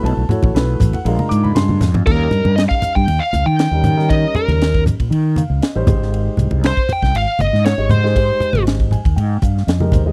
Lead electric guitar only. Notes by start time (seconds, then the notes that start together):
2.07 A#4
2.56 D#5
2.69 F5
2.95 G5
3.20 F5
3.46 G5
4.10 D#5
4.36 A#4
6.66 C5
6.93 G5
7.16 F5
7.41 D#5
7.66 C#5
7.91 C5